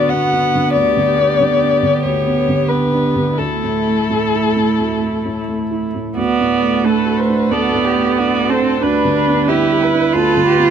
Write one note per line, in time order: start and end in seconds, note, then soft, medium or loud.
0.00 0.76 D2 medium
0.00 0.55 D3 soft
0.00 0.12 B3 soft
0.00 3.39 B3 medium
0.00 3.41 B3 medium
0.00 0.34 D4 soft
0.00 3.35 D4 medium
0.00 0.76 F#4 medium
0.00 0.78 F#4 medium
0.00 0.10 D5 medium
0.09 0.46 B3 soft
0.09 0.73 F#5 medium
0.34 0.67 D4 soft
0.55 0.76 D3 soft
0.73 2.00 D2 medium
0.73 3.38 G4 medium
0.73 2.00 D5 medium
0.97 1.31 D3 soft
1.18 1.52 B3 soft
1.41 1.74 D3 soft
1.62 1.96 D4 soft
1.83 2.17 D3 soft
2.03 3.35 D2 soft
2.03 2.70 C#5 medium
2.27 2.61 B3 soft
2.48 2.84 D3 soft
2.69 3.06 B3 soft
2.69 3.39 B4 medium
2.93 3.30 D4 soft
3.16 3.39 D3 soft
3.38 4.76 D2 medium
3.38 6.16 A3 medium
3.38 5.98 A3 soft
3.38 6.18 E4 medium
3.38 5.94 E4 soft
3.38 5.49 A4 medium
3.38 6.16 A4 medium
3.63 4.01 A2 soft
3.87 4.24 A3 soft
4.10 4.47 A2 soft
4.34 4.71 E4 soft
4.56 4.93 A2 soft
4.80 6.15 D2 soft
5.02 5.39 A3 soft
5.25 5.63 A2 soft
5.48 5.86 A3 soft
5.71 6.09 E4 soft
5.95 6.18 A2 soft
6.17 7.47 D2 medium
6.17 8.79 A3 medium
6.17 6.86 B3 medium
6.17 6.87 F#4 medium
6.17 8.79 A4 medium
6.17 6.86 D5 soft
6.17 8.79 F#5 medium
6.40 6.76 A2 soft
6.61 6.98 A3 soft
6.84 7.53 A3 medium
6.84 7.20 D4 soft
6.84 7.21 A4 medium
6.84 7.19 B4 medium
7.06 7.42 F#4 soft
7.18 7.54 B4 medium
7.18 7.53 C5 medium
7.28 7.64 D4 soft
7.50 8.79 D2 soft
7.50 8.51 B3 medium
7.50 7.87 A4 medium
7.50 8.17 D5 medium
7.73 8.09 A2 soft
7.85 8.19 G4 medium
7.95 8.31 A3 soft
8.18 8.53 D4 soft
8.18 8.51 F#4 medium
8.18 8.52 D5 medium
8.39 8.74 F#4 soft
8.49 8.82 C4 medium
8.49 8.84 A4 medium
8.49 8.85 C5 medium
8.61 8.83 D4 soft
8.83 10.10 D2 medium
8.83 10.70 G3 medium
8.83 9.49 D4 medium
8.83 10.70 G4 medium
8.83 9.50 B4 medium
8.83 9.15 B4 medium
8.83 10.70 B4 medium
9.05 9.40 D3 soft
9.15 9.48 B4 medium
9.27 9.62 B3 soft
9.47 9.84 D4 soft
9.47 10.14 E4 medium
9.47 9.84 G4 medium
9.47 10.70 B4 medium
9.71 10.06 G4 soft
9.82 10.16 B4 medium
9.93 10.28 D4 soft
10.13 10.70 D2 medium
10.13 10.70 F4 loud
10.13 10.46 A4 medium
10.37 10.70 D3 soft
10.46 10.70 G4 medium
10.58 10.70 B3 medium